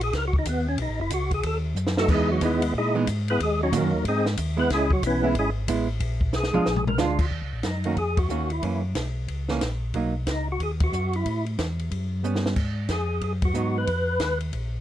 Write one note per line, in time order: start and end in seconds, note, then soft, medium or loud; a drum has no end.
0.00 0.12 A#1 loud
0.00 0.14 G#4 medium
0.00 ride medium
0.13 0.45 C#2 medium
0.13 0.25 A#4 medium
0.13 kick soft
0.13 snare soft
0.13 ride medium
0.28 0.36 F#4 medium
0.33 kick medium
0.39 0.47 D#4 medium
0.45 0.77 D#2 medium
0.45 0.67 B3 medium
0.45 kick soft
0.45 hi-hat pedal medium
0.45 ride medium
0.69 0.79 C#4 medium
0.77 0.88 B1 medium
0.77 kick soft
0.77 ride medium
0.82 1.00 D#4 medium
0.89 1.00 A1 medium
0.99 1.10 F#1 medium
0.99 1.12 E4 medium
1.10 1.42 C#2 medium
1.10 1.32 F#4 medium
1.10 kick soft
1.10 hi-hat pedal medium
1.10 ride medium
1.31 1.45 G#4 medium
1.31 kick soft
1.31 ride soft
1.43 1.75 D#2 medium
1.43 1.58 A4 medium
1.43 kick soft
1.43 ride medium
1.75 2.07 F#2 medium
1.75 hi-hat pedal medium
1.87 snare medium
1.97 2.10 A3 medium
1.97 2.10 D#4 medium
1.97 2.10 F#4 medium
1.97 2.09 A4 medium
1.97 snare medium
2.08 2.40 E2 medium
2.08 2.40 E3 medium
2.08 2.41 G#3 medium
2.08 2.41 B3 medium
2.08 2.41 D#4 medium
2.08 2.30 G#4 medium
2.08 kick medium
2.08 crash medium
2.12 2.31 G#3 medium
2.12 2.31 D#4 medium
2.12 2.31 E4 medium
2.32 2.42 F#3 medium
2.32 2.42 F#4 medium
2.41 2.73 D#2 medium
2.41 2.60 E3 medium
2.41 2.60 G#3 medium
2.41 2.74 G#3 medium
2.41 2.60 B3 medium
2.41 2.61 D#4 medium
2.41 kick soft
2.41 hi-hat pedal medium
2.41 ride medium
2.45 2.74 B3 medium
2.45 2.74 E4 medium
2.62 ride medium
2.74 3.06 A#2 medium
2.74 kick soft
2.78 2.96 G#3 medium
2.78 2.96 D#4 medium
2.78 2.96 E4 medium
2.78 2.96 G#4 medium
2.95 3.06 E3 medium
2.95 3.06 G#3 medium
2.95 3.06 B3 medium
2.95 3.06 D#4 medium
3.07 3.39 G#2 loud
3.07 kick soft
3.07 hi-hat pedal medium
3.07 ride medium
3.28 3.41 B3 medium
3.28 3.41 E4 medium
3.28 3.41 G#4 medium
3.28 3.41 B4 medium
3.28 ride medium
3.39 3.71 D#2 medium
3.39 3.61 G#4 medium
3.39 kick soft
3.39 ride medium
3.43 3.61 G#3 medium
3.63 3.74 F#3 medium
3.63 3.74 C#4 medium
3.63 3.73 D#4 medium
3.63 3.73 F#4 medium
3.72 3.83 A#2 loud
3.72 3.91 D#3 medium
3.72 3.91 A#3 medium
3.72 3.91 C#4 medium
3.72 3.91 F#4 medium
3.72 kick soft
3.72 hi-hat pedal medium
3.72 ride medium
3.76 4.05 D#3 soft
3.76 4.05 F#3 soft
3.76 4.05 A#3 soft
3.76 4.05 D#4 medium
3.83 3.94 F#2 soft
3.93 4.04 D#2 medium
4.04 4.36 G#2 medium
4.04 4.26 G#4 medium
4.04 kick soft
4.04 ride medium
4.08 4.27 G#3 medium
4.08 4.27 C4 medium
4.08 4.27 D#4 medium
4.26 snare medium
4.37 4.69 D#2 loud
4.37 kick soft
4.37 hi-hat pedal medium
4.37 ride medium
4.57 4.68 G#3 medium
4.57 4.69 B3 medium
4.57 4.71 B3 medium
4.57 4.69 E4 medium
4.57 4.71 B4 loud
4.69 5.01 C#2 loud
4.69 kick soft
4.69 snare soft
4.69 ride medium
4.73 4.92 G#3 medium
4.73 4.92 C#4 medium
4.73 4.92 E4 medium
4.73 4.92 G#4 medium
4.91 5.04 F#3 medium
4.91 5.04 F#4 medium
4.91 kick medium
5.02 5.34 B1 loud
5.02 5.35 E4 medium
5.02 kick soft
5.02 hi-hat pedal medium
5.02 ride medium
5.07 5.36 E3 medium
5.07 5.35 B3 medium
5.07 5.35 C#4 medium
5.23 5.34 G#3 medium
5.23 5.35 B3 medium
5.23 5.35 E4 medium
5.35 5.67 G#1 medium
5.35 kick soft
5.35 ride medium
5.39 5.50 G#3 medium
5.39 5.50 C#4 medium
5.39 5.50 E4 medium
5.39 5.50 G#4 medium
5.67 5.99 A1 medium
5.67 5.87 G#3 medium
5.67 5.87 B3 medium
5.67 5.87 E4 medium
5.67 kick soft
5.67 hi-hat pedal medium
5.67 ride medium
6.00 6.32 A#1 loud
6.00 kick soft
6.00 ride medium
6.21 kick medium
6.33 6.52 B1 loud
6.33 6.84 G#4 medium
6.33 snare medium
6.33 hi-hat pedal medium
6.43 snare medium
6.53 6.60 B1 soft
6.53 6.65 G#3 medium
6.53 6.65 D4 medium
6.53 6.66 F4 medium
6.53 mid tom medium
6.66 6.98 A#1 medium
6.66 snare medium
6.76 floor tom medium
6.87 7.00 A#4 loud
6.87 floor tom medium
6.98 7.30 D2 loud
6.98 7.17 G#3 medium
6.98 7.17 D4 medium
6.98 7.18 F4 medium
6.98 snare medium
6.98 hi-hat pedal medium
7.03 7.26 F4 medium
7.19 kick medium
7.19 crash medium
7.31 7.42 D#2 medium
7.31 kick soft
7.42 7.53 C#2 soft
7.52 7.63 A#1 medium
7.63 7.96 F#2 medium
7.63 7.96 D#4 medium
7.63 kick soft
7.63 snare medium
7.63 hi-hat pedal medium
7.63 ride soft
7.84 7.96 D#3 medium
7.84 7.96 A#3 medium
7.84 7.97 C#4 medium
7.84 7.97 F#4 medium
7.84 ride soft
7.96 8.29 F2 medium
7.96 8.19 G#4 medium
7.96 kick soft
7.96 ride soft
8.17 8.52 F#4 medium
8.17 kick medium
8.17 ride medium
8.29 8.61 D#2 medium
8.29 8.48 D#3 soft
8.29 8.49 A#3 medium
8.29 8.49 C#4 medium
8.29 8.49 F#4 medium
8.29 hi-hat pedal medium
8.50 8.82 E4 medium
8.50 ride soft
8.62 8.94 F#2 medium
8.62 8.81 E3 medium
8.62 8.82 A#3 medium
8.62 8.82 C#4 medium
8.62 kick soft
8.62 ride medium
8.95 9.27 B1 medium
8.95 kick soft
8.95 snare medium
8.95 hi-hat pedal soft
8.95 ride medium
9.28 9.60 C#2 medium
9.28 kick soft
9.28 ride soft
9.49 9.60 E3 medium
9.49 9.61 A#3 medium
9.49 9.61 C#4 medium
9.49 snare medium
9.61 9.93 A#1 medium
9.61 kick soft
9.61 snare medium
9.61 hi-hat pedal medium
9.61 ride medium
9.94 10.26 B1 medium
9.94 10.13 F#3 medium
9.94 10.13 A#3 medium
9.94 10.14 D#4 medium
9.94 kick soft
9.94 ride soft
10.26 10.59 C#2 medium
10.26 kick soft
10.26 snare medium
10.26 hi-hat pedal medium
10.26 ride medium
10.31 10.48 D#4 medium
10.52 10.62 F#4 medium
10.59 10.92 D#2 medium
10.59 10.72 G#4 medium
10.59 kick soft
10.59 ride soft
10.80 11.16 F#4 medium
10.80 kick medium
10.80 ride medium
10.92 11.24 F#2 medium
10.92 hi-hat pedal medium
11.13 11.45 E4 medium
11.13 ride soft
11.25 11.57 A2 medium
11.25 kick soft
11.25 ride medium
11.46 ride soft
11.58 11.90 E2 medium
11.58 kick soft
11.58 snare medium
11.58 hi-hat pedal medium
11.58 ride medium
11.79 ride soft
11.91 12.23 F#2 medium
11.91 kick soft
11.91 ride medium
12.23 12.55 G2 medium
12.23 12.57 G3 soft
12.23 12.57 B3 medium
12.23 12.57 C#4 medium
12.23 hi-hat pedal medium
12.35 snare medium
12.46 snare medium
12.56 12.88 G#2 medium
12.56 kick medium
12.56 crash medium
12.89 13.21 F2 medium
12.89 13.23 G#4 medium
12.89 kick soft
12.89 snare medium
12.89 hi-hat pedal medium
12.89 ride medium
13.21 13.54 F#2 medium
13.21 13.33 G#4 medium
13.21 kick soft
13.21 ride medium
13.42 13.78 F#4 medium
13.42 kick medium
13.42 ride medium
13.54 13.86 G#2 medium
13.54 13.88 F#3 medium
13.54 13.88 B3 medium
13.54 13.88 D#4 medium
13.54 hi-hat pedal medium
13.78 14.39 B4 loud
13.87 14.19 F2 medium
13.87 kick soft
13.87 ride medium
14.20 14.52 D#2 medium
14.20 kick soft
14.20 snare medium
14.20 hi-hat pedal soft
14.20 ride medium
14.40 ride soft
14.53 14.80 A#1 medium
14.53 kick soft
14.53 ride medium